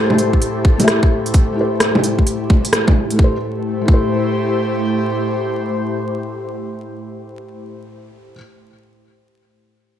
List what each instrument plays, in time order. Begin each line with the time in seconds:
Already playing: analog synth pad A2 A3 E4 G4 C5, felt piano A3 E4 G4 C5, synth texture A3 A4
0.10 low bongo
0.18 closed hi-hat
0.33 kick
0.42 closed hi-hat
0.65 kick
0.75 felt piano A3 E4
0.80 felt piano G4, closed hi-hat, low bongo
0.84 felt piano E5, cross-stick, closed hi-hat
1.03 kick
1.26 closed hi-hat
1.34 kick, closed hi-hat
1.53 felt piano A3 E4
1.58 felt piano G4 C5
1.80 cross-stick, closed hi-hat
1.95 low bongo
2.04 closed hi-hat
2.19 kick
2.27 closed hi-hat
2.50 kick, low bongo
2.65 closed hi-hat
2.73 cross-stick, closed hi-hat
2.88 kick, low bongo
3.11 felt piano A3, closed hi-hat
3.16 analog synth pad A2, felt piano E4 G4, kick
3.24 analog synth pad A3, felt piano C5
3.34 analog synth pad E4
3.39 analog synth pad G4
3.47 analog synth pad C5
3.81 felt piano A3
3.85 felt piano E4 G4, kick
3.94 felt piano C5